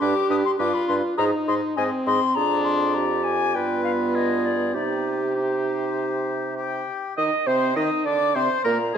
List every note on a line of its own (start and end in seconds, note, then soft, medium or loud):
0.01 0.14 G2 medium
0.01 0.14 D4 medium
0.01 0.58 G4 loud
0.01 0.14 B4 medium
0.01 0.29 D6 loud
0.30 0.43 G2 medium
0.30 0.43 D4 medium
0.30 0.43 B4 medium
0.30 0.36 D#6 loud
0.45 0.51 C6 loud
0.59 0.73 G2 medium
0.59 0.72 D4 medium
0.59 1.17 F4 loud
0.59 0.72 B4 medium
0.59 0.76 D6 loud
0.74 0.87 B5 loud
0.88 1.02 G2 medium
0.88 1.02 D4 medium
0.88 1.02 B4 medium
0.88 0.95 C6 loud
1.17 1.32 G#2 medium
1.17 1.80 D#4 medium
1.17 1.31 G#4 medium
1.17 1.31 D#5 medium
1.17 1.24 A#5 loud
1.48 1.61 G#2 medium
1.48 1.61 G#4 medium
1.48 1.61 D#5 medium
1.48 1.54 C6 loud
1.77 1.91 G#2 medium
1.77 2.38 C4 medium
1.77 1.91 G#4 medium
1.77 1.90 D#5 medium
1.77 1.83 G#5 loud
2.06 2.20 G#2 medium
2.06 2.20 G#4 medium
2.06 2.20 D#5 medium
2.06 2.36 C6 loud
2.35 3.57 F2 medium
2.35 3.27 D4 loud
2.35 2.91 G#4 medium
2.35 3.51 D5 medium
2.35 2.66 A#5 loud
2.64 2.95 C6 loud
2.94 3.56 G4 medium
2.94 3.25 A#5 loud
3.24 3.56 G#5 loud
3.54 4.74 G2 medium
3.54 4.77 B3 medium
3.54 4.74 F4 medium
3.54 4.17 B4 medium
3.54 3.84 G5 loud
3.84 3.91 F5 loud
4.15 4.76 G#4 medium
4.15 4.47 D#5 loud
4.45 4.74 D5 loud
4.75 6.83 C3 medium
4.75 5.35 D#4 medium
4.75 5.35 G4 medium
4.75 6.87 G4 medium
4.75 5.14 D5 medium
5.35 6.84 D#4 medium
5.35 6.54 G4 medium
5.35 6.53 C5 medium
6.57 7.13 G4 medium
6.57 7.13 G5 loud
7.17 7.31 D#3 medium
7.17 7.31 D#4 medium
7.17 7.48 D#5 medium
7.17 7.48 D#5 loud
7.17 7.24 D#6 loud
7.47 7.76 C3 loud
7.47 7.76 C4 loud
7.47 7.78 C5 loud
7.47 7.75 C5 loud
7.47 7.76 C6 loud
7.76 7.90 D#3 loud
7.76 8.07 D#4 loud
7.76 7.89 D#5 medium
7.76 8.07 D#5 medium
7.76 8.05 D#6 loud
8.06 8.35 D3 medium
8.06 8.35 D4 loud
8.06 8.37 D5 medium
8.06 8.37 D6 loud
8.35 8.49 C3 medium
8.35 8.49 C4 medium
8.35 8.65 C5 medium
8.35 8.64 C5 loud
8.35 8.67 C6 loud
8.64 8.94 A#2 medium
8.64 8.78 A#3 medium
8.64 8.78 A#4 medium
8.64 8.79 A#4 loud
8.64 8.97 A#5 loud
8.94 8.98 G#2 medium
8.94 8.98 G#4 medium